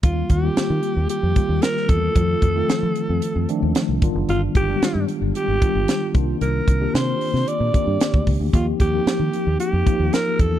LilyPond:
<<
  \new Staff \with { instrumentName = "Alto saxophone" } { \time 4/4 \key ees \major \tempo 4 = 113 f'8 g'4. g'4 bes'8 a'8~ | a'2~ a'8 r4. | f'8 g'4 r8 g'4. r8 | bes'4 c''4 d''4. r8 |
f'8 g'4. g'4 bes'8 a'8 | }
  \new Staff \with { instrumentName = "Tine electric piano" } { \time 4/4 \key ees \major <ees g bes c' f'>8. <ees g bes c' f'>4. r16 <ees g bes c' f'>4~ <ees g bes c' f'>16 r16 | <ees f a c' f'>8. <ees f a c' f'>4. r16 <ees f a c' d'>4 <ees g b d' f'>8~ | <ees g b d' f'>8 r16 <ees g aes b d' g'>4. r16 <ees g b d' f'>4 <ees bes c' d' f'>8~ | <ees bes c' d' f'>8 r16 <ees bes c' d' g'>4. r16 <ees bes c' d' g'>4~ <ees bes c' d' g'>16 r16 |
<f bes c' ees' g'>8. <f bes c' ees' g'>4. r16 <f bes c' ees' f'>4~ <f bes c' ees' f'>16 r16 | }
  \new Staff \with { instrumentName = "Fingered electric bass" } { \clef bass \time 4/4 \key ees \major ees,8 ees,8 r16 ees16 r16 ees,16 r16 f,16 r16 ees,16 r8 fes,8 | f,8 f,8 r16 f16 r16 f,16 r16 f,16 r16 ees,16 r16 c,16 g,,16 ges,,16 | g,,8 g,,8 r16 g,16 r16 g,,16 r16 aes,,16 r16 g,,16 r8 c,8 | c,8 c,8 c8 r16 c16 r16 bes,16 r16 g,16 r16 d,16 des,16 d,16 |
ees,8 ees,8 r16 ees16 r16 ees,16 r16 f,16 r16 ees,16 r8 fes,8 | }
  \new DrumStaff \with { instrumentName = "Drums" } \drummode { \time 4/4 <hh bd>8 <hh bd>8 <hh sn>8 hh8 hh8 <hh bd>8 <hh sn>16 sn16 <hh bd>8 | <hh bd>8 <hh bd>8 <hh sn>8 hh8 hh8 hh8 <hh sn>8 <hh bd>8 | hh8 <hh bd>8 <hh sn>8 hh8 hh8 <hh bd>8 <hh sn>8 <hh bd>8 | hh8 <hh bd>8 <hh sn>8 hho16 sn16 hh8 <hh bd>8 <hh sn>16 bd16 <hho bd>8 |
<hh bd>8 <hh bd>8 <hh sn>8 hh8 hh8 <hh bd>8 <hh sn>8 <hh bd>8 | }
>>